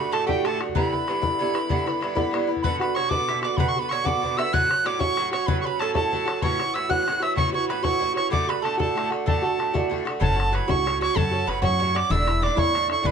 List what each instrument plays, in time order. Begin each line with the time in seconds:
Already playing: bouzouki F#4, mandolin B4, tin whistle B5
0.00 bouzouki D3 A3
0.12 bouzouki A2 D3 A3 F#4, mandolin A4, tin whistle A5, bodhran
0.26 bouzouki A2 D3 A3 F#4, mandolin G4, tin whistle G5, bodhran
0.45 bouzouki A2 D3 A3 F#4, mandolin A4, tin whistle A5, bodhran
0.61 bouzouki D3 A3 F#4, bodhran
0.69 bodhran
0.75 bouzouki G2 D3 B3 E4, mandolin B4, tin whistle A#5, bodhran
0.89 bouzouki E4, tin whistle B5
0.93 bouzouki D3 B3, bodhran
1.07 bouzouki G2 D3 B3 E4, bodhran
1.22 bouzouki G2 D3 B3 E4, bodhran
1.39 bouzouki G2 D3 B3 E4
1.54 bouzouki D3 B3 E4, bodhran
1.69 bouzouki G2 D3 B3 E4, bodhran
1.86 bouzouki D3 B3 E4, bodhran
2.00 bouzouki G2 D3 B3 E4, bodhran
2.15 bouzouki G2 D3 B3 E4, bodhran
2.31 bouzouki G2 D3 B3 E4, bodhran
2.47 bouzouki D3 B3 E4
2.56 bodhran
2.62 bouzouki B2 D3 B3 F#4, mandolin B4, tin whistle B5, bodhran
2.80 bouzouki D3 B3 F#4, mandolin B4, tin whistle B5, bodhran
2.95 bouzouki B2 D3 B3, mandolin C#5, tin whistle C#6, bodhran
2.99 bouzouki F#4
3.09 bouzouki B2 D3 B3 F#4, mandolin D5, tin whistle D6, bodhran
3.28 bouzouki B2 D3 B3 F#4, mandolin E5, bodhran
3.42 bouzouki D3 B3 F#4, mandolin D5, tin whistle D6, bodhran
3.57 bouzouki B2 D3 B3 F#4, mandolin B4, tin whistle B5, bodhran
3.68 tin whistle C#6
3.76 bouzouki D3 B3 F#4, tin whistle B5
3.82 mandolin B4
3.89 bouzouki B2 D3 B3 F#4, mandolin C#5, tin whistle C#6, bodhran
4.04 bouzouki B2 D3 B3 F#4, mandolin D5, tin whistle D6, bodhran
4.22 bouzouki B2 D3 B3 F#4, bodhran
4.37 bouzouki D3 B3 F#4, mandolin E5, tin whistle E6, bodhran
4.52 bouzouki A2 F#3 C#4 F#4, mandolin F#5, tin whistle F#6, bodhran
4.70 bouzouki F#3 C#4 F#4, bodhran
4.84 bouzouki A2 F#3 C#4 F#4, mandolin D5, tin whistle D6, bodhran
4.99 bouzouki A2 F#3 C#4 F#4, mandolin C#5, tin whistle C#6, bodhran
5.17 bouzouki A2 F#3 C#4 F#4, bodhran
5.31 bouzouki F#3 C#4 F#4, mandolin C#5, tin whistle C#6, bodhran
5.46 bouzouki A2 F#3 C#4 F#4, mandolin B4, tin whistle B5, bodhran
5.61 bouzouki F#4, tin whistle C#6
5.65 bouzouki F#3 C#4, mandolin B4, tin whistle B5
5.79 bouzouki A2 F#3 C#4 F#4, mandolin A4, tin whistle A5, bodhran
5.94 bouzouki A2 F#3 C#4 F#4, mandolin A4, tin whistle A5, bodhran
6.12 bouzouki A2 F#3 C#4 F#4, bodhran
6.25 bouzouki F#3 C#4 F#4, bodhran
6.42 bouzouki A2 E3 C#4 F#4, mandolin C#5, tin whistle C#6, bodhran
6.59 bouzouki E3 C#4 F#4, bodhran
6.74 bouzouki A2 E3 C#4 F#4, mandolin E5, tin whistle E6, bodhran
6.89 bouzouki A2 E3 C#4 F#4, mandolin F#5, tin whistle F#6, bodhran
7.02 bouzouki A2, mandolin F#5
7.07 bouzouki E3 C#4 F#4, bodhran
7.12 mandolin F#5
7.20 bouzouki E3 C#4 F#4, mandolin E5, tin whistle E6, bodhran
7.35 bouzouki A2 E3 C#4 F#4, mandolin C#5, tin whistle C#6, bodhran
7.52 bouzouki E3 C#4 F#4, mandolin C#5, tin whistle C#6
7.68 bouzouki A2 E3 C#4 F#4, mandolin B4, tin whistle B5, bodhran
7.83 bouzouki A2 E3 C#4 F#4, mandolin C#5, tin whistle C#6, bodhran
7.99 bouzouki A2 E3 C#4 F#4, bodhran
8.14 bouzouki E3 C#4 F#4, mandolin C#5, tin whistle C#6, bodhran
8.30 bouzouki A2 D3 A3 F#4, mandolin D5, tin whistle D6, bodhran
8.47 bouzouki D3 A3 F#4, mandolin B4, tin whistle B5, bodhran
8.62 bouzouki A2 D3 A3 F#4, mandolin A4, tin whistle A5, bodhran
8.78 bouzouki A2 D3 A3 F#4, mandolin A4, tin whistle A5, bodhran
8.95 bouzouki A2 D3 A3 F#4, bodhran
9.10 bouzouki D3 A3 F#4, bodhran
9.26 bouzouki A2 D3 A3 F#4, mandolin A4, tin whistle A5, bodhran
9.42 bouzouki D3 A3 F#4
9.57 bouzouki A2 D3 A3 F#4, bodhran
9.74 bouzouki A2 D3 A3 F#4, bodhran
9.90 bouzouki A2 D3 A3 F#4, bodhran
10.05 bouzouki D3 A3 F#4, bodhran
10.20 upright bass F#1, bouzouki A2 F#3 C#4 F#4, mandolin A4, tin whistle A5, bodhran
10.36 bouzouki F#3 C#4 F#4
10.40 bodhran
10.51 bouzouki A2 F#3 C#4 F#4, mandolin B4, bodhran
10.55 tin whistle B5
10.68 upright bass C#2, bouzouki A2 F#3 C#4 F#4, mandolin C#5, tin whistle C#6, bodhran
10.85 bouzouki A2 F#3 C#4 F#4, bodhran
11.01 bouzouki F#3 C#4 F#4, mandolin C#5, tin whistle C#6, bodhran
11.15 upright bass F#2, bouzouki A2 F#3 C#4 F#4, mandolin A4, tin whistle A5, bodhran
11.31 bouzouki F#3 C#4 F#4
11.46 upright bass F#1, bouzouki A2 F#3 C#4 F#4, mandolin B4, tin whistle B5, bodhran
11.62 upright bass F#2, bouzouki A2 F#3 C#4 F#4, mandolin C#5, tin whistle C#6, bodhran
11.79 bouzouki A2 F#3 C#4 F#4, mandolin C#5, bodhran
11.95 bouzouki F#3 C#4 F#4, mandolin D5, tin whistle D6, bodhran
12.10 upright bass E1, bouzouki A2 D3 D4 E4, mandolin E5, tin whistle E6, bodhran
12.26 bouzouki D3 D4 E4, bodhran
12.41 bouzouki A2 D3 D4 E4, mandolin D5, tin whistle D6, bodhran
12.55 upright bass E2, bouzouki A2 D3 D4 E4, mandolin C#5, tin whistle C#6, bodhran
12.73 bouzouki A2 D3 D4 E4, bodhran
12.88 bouzouki D3 D4 E4, tin whistle C#6, bodhran
13.03 upright bass E2, bouzouki A2 D3 D4 E4, mandolin B4, tin whistle B5, bodhran